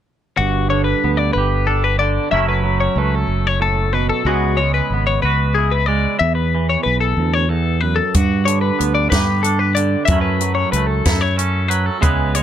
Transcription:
0.37 0.93 G1 loud
0.37 2.32 G2 medium
0.37 0.70 F#4 medium
0.70 1.99 D3 medium
0.70 0.84 C#5 medium
0.84 1.17 B4 medium
1.04 1.31 D2 medium
1.04 2.29 B3 medium
1.17 1.33 D5 medium
1.33 2.17 G1 medium
1.33 1.66 B4 medium
1.38 2.29 G4 medium
1.67 2.28 D4 medium
1.67 1.83 A4 medium
1.84 1.99 B4 medium
1.99 2.32 D3 medium
1.99 2.31 D5 medium
2.31 2.87 F#1 medium
2.31 4.22 F#2 medium
2.31 2.62 F#3 medium
2.31 2.96 A3 medium
2.31 4.23 C#4 medium
2.31 4.28 E4 medium
2.31 2.48 E5 medium
2.49 2.80 B4 medium
2.64 4.22 F#3 medium
2.80 2.98 C#5 medium
2.96 3.23 C#2 medium
2.96 4.23 A3 medium
2.96 3.15 B4 medium
3.15 3.47 A4 medium
3.27 4.10 F#1 medium
3.47 3.61 C#5 medium
3.60 3.93 A2 medium
3.60 3.93 A4 medium
3.93 4.26 B2 medium
3.93 4.09 B4 medium
4.10 4.26 A4 medium
4.25 4.80 C#2 medium
4.25 6.17 C#3 medium
4.25 4.58 G#3 medium
4.25 4.93 B3 medium
4.25 5.57 E4 medium
4.25 4.59 F#4 medium
4.25 5.24 G#4 medium
4.57 5.87 G#3 medium
4.57 4.74 C#5 medium
4.74 5.06 B4 medium
4.90 5.18 G#1 medium
4.90 8.44 B3 soft
5.07 5.22 C#5 medium
5.22 6.06 C#2 medium
5.22 6.17 F#4 medium
5.22 5.55 B4 medium
5.55 6.18 E4 medium
5.55 5.71 G#4 medium
5.71 5.86 B4 medium
5.86 6.16 G#3 medium
5.86 6.19 D5 medium
6.19 6.75 E2 medium
6.19 6.35 E5 medium
6.24 7.18 E2 medium
6.35 6.68 B4 medium
6.55 8.12 E3 medium
6.70 6.83 C#5 medium
6.83 7.13 B1 medium
6.83 7.00 B4 medium
7.01 7.34 A4 medium
7.17 7.50 D2 medium
7.17 8.00 E2 medium
7.34 7.49 C#5 medium
7.49 7.82 E2 medium
7.49 7.81 A4 medium
7.81 8.15 F#2 medium
7.81 7.97 B4 medium
7.96 8.14 A4 medium
8.14 8.70 G2 medium
8.14 10.09 G2 medium
8.14 8.47 F#4 medium
8.14 kick medium
8.14 closed hi-hat medium
8.45 9.76 D3 medium
8.45 8.61 C#5 medium
8.45 closed hi-hat medium
8.61 8.94 B4 medium
8.79 9.07 D2 medium
8.79 10.05 B3 medium
8.79 closed hi-hat medium
8.95 9.10 D5 medium
9.10 9.95 G2 medium
9.10 10.05 G4 medium
9.10 9.43 B4 medium
9.10 kick medium
9.10 snare loud
9.10 closed hi-hat medium
9.43 10.05 D4 medium
9.43 9.59 A4 medium
9.43 closed hi-hat medium
9.59 9.76 B4 medium
9.75 10.09 D3 medium
9.75 10.05 D5 medium
9.75 closed hi-hat soft
10.05 10.64 F#2 medium
10.05 10.21 E5 medium
10.05 kick loud
10.05 closed hi-hat medium
10.09 11.99 F#2 medium
10.09 10.40 F#3 medium
10.09 10.75 A3 medium
10.09 11.37 C#4 soft
10.09 11.05 E4 medium
10.21 10.54 B4 medium
10.41 11.68 F#3 medium
10.41 closed hi-hat medium
10.55 10.72 C#5 medium
10.72 11.01 C#2 medium
10.72 10.87 B4 medium
10.72 closed hi-hat medium
10.76 12.01 A3 medium
10.87 11.21 A4 medium
11.05 11.88 F#2 medium
11.05 11.99 E4 medium
11.05 kick medium
11.05 snare loud
11.05 closed hi-hat medium
11.21 11.37 C#5 medium
11.37 11.99 C#4 medium
11.37 11.68 A4 medium
11.37 closed hi-hat medium
11.68 11.99 F#3 medium
11.68 11.86 B4 medium
11.68 closed hi-hat medium
11.86 12.02 A4 medium
12.01 12.43 C#2 medium
12.01 12.43 C#3 medium
12.01 12.34 G#3 medium
12.01 12.43 B3 medium
12.01 12.43 E4 medium
12.01 12.43 G#4 medium
12.01 12.35 B4 medium
12.01 kick loud
12.01 closed hi-hat medium
12.35 12.43 G#3 medium
12.35 12.43 C#5 medium
12.35 closed hi-hat medium

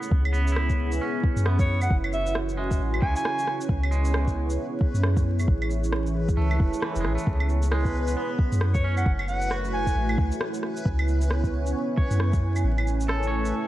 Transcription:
0.00 0.23 B3 medium
0.00 0.12 F#5 medium
0.00 shaker medium
0.11 0.99 C#2 loud
0.11 1.89 B3 medium
0.11 10.82 C#4 medium
0.11 3.66 E4 medium
0.11 1.88 G#4 medium
0.11 13.67 B4 medium
0.11 10.82 C#5 medium
0.11 kick loud
0.25 claves medium
0.33 0.90 B3 medium
0.33 shaker soft
0.48 shaker medium
0.52 1.04 E4 medium
0.56 cross-stick loud
0.70 kick medium
0.70 shaker soft
0.92 shaker medium
1.01 1.58 C#4 medium
1.24 kick loud
1.36 1.89 F#2 medium
1.36 shaker medium
1.45 2.03 B3 medium
1.45 cross-stick loud
1.59 1.79 C#5 medium
1.59 kick loud
1.59 shaker soft
1.82 1.96 F#5 medium
1.82 claves soft
1.82 shaker medium
1.91 2.79 F#1 loud
1.91 3.68 F#4 medium
1.91 kick loud
2.04 claves medium
2.13 2.37 E5 loud
2.13 shaker soft
2.26 shaker medium
2.35 cross-stick loud
2.49 shaker soft
2.57 3.15 G#3 medium
2.71 kick medium
2.71 shaker medium
2.79 3.00 A1 medium
2.94 claves medium
3.02 3.14 C#2 medium
3.02 3.59 C#3 medium
3.02 3.13 G#5 medium
3.02 kick loud
3.16 3.61 G#5 loud
3.16 shaker medium
3.25 cross-stick loud
3.39 shaker soft
3.47 cross-stick medium
3.61 shaker medium
3.69 4.58 C#2 loud
3.69 5.46 B3 medium
3.69 9.02 E4 medium
3.69 9.02 G#4 medium
3.69 kick loud
3.83 claves medium
3.91 4.49 G#3 medium
3.91 shaker soft
4.05 shaker medium
4.14 cross-stick loud
4.27 kick medium
4.27 shaker soft
4.50 shaker medium
4.81 kick loud
4.94 5.47 F#2 medium
4.94 shaker medium
5.03 cross-stick loud
5.17 kick loud
5.17 shaker soft
5.39 claves soft
5.39 shaker medium
5.47 6.36 A1 loud
5.47 7.25 E3 medium
5.47 kick loud
5.62 claves medium
5.71 shaker soft
5.84 shaker medium
5.93 cross-stick loud
6.06 shaker soft
6.29 kick medium
6.29 shaker medium
6.37 6.59 C#2 medium
6.37 6.95 A3 medium
6.51 claves medium
6.60 6.73 E1 medium
6.60 kick loud
6.73 shaker medium
6.82 7.39 E3 medium
6.82 cross-stick loud
6.96 7.06 E1 medium
6.96 shaker soft
7.01 7.17 A1 medium
7.01 7.15 G#3 medium
7.01 cross-stick medium
7.15 7.67 A3 medium
7.15 shaker medium
7.27 8.16 C#2 loud
7.27 9.04 B3 medium
7.27 kick loud
7.40 claves medium
7.49 shaker soft
7.63 shaker medium
7.72 8.29 G#3 medium
7.72 cross-stick loud
7.85 kick medium
7.85 shaker soft
8.08 shaker medium
8.17 8.74 B3 medium
8.39 kick loud
8.52 9.05 F#2 loud
8.52 shaker medium
8.61 cross-stick loud
8.73 8.94 C#5 medium
8.73 kick loud
8.73 shaker soft
8.84 9.26 C#4 medium
8.97 9.11 F#5 medium
8.97 claves soft
8.97 shaker medium
9.06 9.95 F#1 loud
9.06 10.84 A3 medium
9.06 13.67 E4 medium
9.06 10.84 F#4 medium
9.06 kick loud
9.19 claves medium
9.28 9.52 F#5 medium
9.28 shaker soft
9.42 shaker medium
9.51 10.08 F#4 medium
9.51 cross-stick loud
9.65 shaker soft
9.73 10.18 G#5 loud
9.87 kick medium
9.87 shaker medium
9.95 10.17 A1 medium
10.09 claves medium
10.18 10.31 C#2 medium
10.18 kick loud
10.32 shaker medium
10.41 cross-stick loud
10.54 shaker soft
10.63 cross-stick medium
10.77 shaker medium
10.85 11.74 C#2 loud
10.85 12.63 B3 medium
10.85 13.67 C#4 medium
10.85 12.63 C#5 medium
10.85 13.67 G#5 medium
10.85 kick loud
10.99 claves medium
11.08 shaker soft
11.22 shaker medium
11.31 cross-stick loud
11.44 kick medium
11.44 shaker soft
11.66 shaker medium
11.97 12.55 C#5 medium
11.97 kick loud
12.11 12.63 F#2 loud
12.11 shaker medium
12.20 cross-stick loud
12.33 kick loud
12.33 shaker soft
12.56 claves soft
12.56 shaker medium
12.64 13.53 A1 medium
12.64 13.67 A3 medium
12.64 13.67 C#5 loud
12.78 claves medium
12.87 shaker soft
13.01 shaker medium
13.08 13.66 A4 medium
13.08 cross-stick loud
13.23 shaker soft
13.27 13.67 C#5 medium
13.45 shaker medium

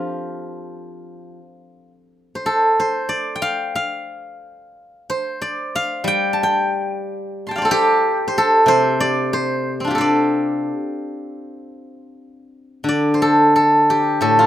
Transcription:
0.00 1.38 F3 medium
0.00 1.89 F4 medium
0.00 1.39 G4 medium
0.00 0.90 A4 medium
0.00 0.33 C5 medium
2.35 2.79 C5 soft
2.46 4.65 A4 medium
2.80 4.78 C5 medium
3.09 4.94 D5 medium
3.36 4.91 G5 medium
3.42 3.75 F5 medium
3.75 5.42 F5 medium
5.10 7.08 C5 medium
5.42 7.26 D5 medium
5.75 7.42 F5 medium
6.04 8.00 G3 medium
6.04 6.43 G5 loud
6.33 7.48 A5 medium
6.43 7.51 G5 medium
7.47 8.93 A5 soft
7.47 8.77 C6 soft
7.51 9.07 G5 soft
7.56 9.00 D5 soft
7.56 9.22 F5 soft
7.62 8.37 A4 medium
7.62 8.27 C5 soft
7.71 9.90 G4 loud
8.28 8.68 C5 medium
8.38 9.94 A4 medium
8.66 10.70 C3 medium
8.66 9.33 C5 medium
9.00 10.00 D5 medium
9.33 9.98 C5 medium
9.80 12.81 C4 soft
9.84 12.64 D4 soft
9.84 12.40 F4 soft
9.91 12.26 G4 soft
9.95 12.14 A4 medium
9.95 11.96 C5 medium
10.01 12.09 D5 medium
12.84 14.47 D3 soft
12.89 14.47 D5 medium
13.14 14.47 C5 soft
13.22 13.55 A4 medium
13.56 14.21 A4 medium
13.90 14.47 G4 medium
14.21 14.47 A2 soft
14.21 14.47 A4 medium
14.39 14.47 F4 medium

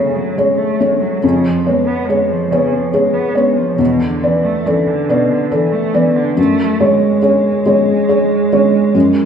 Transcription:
0.00 1.19 F#2 soft
0.00 0.17 C#3 soft
0.00 0.80 A3 soft
0.00 0.38 G#4 soft
0.00 0.38 C#5 soft
0.15 0.38 F#3 soft
0.36 0.59 G#3 soft
0.36 0.77 G#4 soft
0.36 0.77 C#5 soft
0.57 0.82 A3 soft
0.80 1.02 G#3 soft
0.80 1.19 A3 soft
0.80 1.19 C#5 soft
1.01 1.23 F#3 soft
1.23 3.76 F2 soft
1.23 1.47 C#3 soft
1.45 1.69 F3 soft
1.66 1.89 G#3 soft
1.66 2.05 B3 soft
1.66 2.05 C#5 soft
1.87 2.10 B3 soft
2.08 2.31 G#3 soft
2.08 2.48 G#4 soft
2.08 2.48 C#5 soft
2.29 2.52 F3 soft
2.51 2.74 C#3 soft
2.51 2.90 B3 soft
2.51 2.90 C#5 soft
2.72 2.95 F3 soft
2.93 3.15 G#3 soft
2.93 3.32 G#4 soft
2.93 3.33 C#5 soft
3.14 3.35 B3 soft
3.34 3.57 G#3 soft
3.34 3.75 B3 soft
3.34 3.75 C#5 soft
3.56 3.78 F3 soft
3.78 6.33 E2 soft
3.78 4.01 B2 soft
4.00 4.24 D3 soft
4.22 4.46 E3 soft
4.22 4.63 B3 soft
4.22 4.63 D5 soft
4.44 4.68 A3 soft
4.66 4.88 E3 soft
4.66 5.06 A4 soft
4.66 5.06 D5 soft
4.87 5.11 D3 soft
5.09 5.32 B2 soft
5.09 5.48 B3 soft
5.09 5.49 D5 soft
5.30 5.53 D3 soft
5.51 5.74 E3 soft
5.51 5.90 A4 soft
5.51 5.90 D5 soft
5.72 5.96 A3 soft
5.94 6.17 E3 soft
5.94 6.33 B3 soft
5.94 6.33 D5 soft
6.16 6.37 D3 soft
6.36 8.90 F#2 medium
6.36 6.82 A3 medium
6.80 9.25 G#3 medium
6.80 7.19 G#3 soft
6.80 7.19 C#5 soft
7.22 7.61 G#4 soft
7.22 7.61 C#5 soft
7.66 8.05 G#3 soft
7.66 8.05 C#5 soft
8.09 8.48 G#4 soft
8.09 8.48 C#5 soft
8.52 8.91 G#3 soft
8.52 8.91 C#5 soft
8.95 9.25 F#2 medium

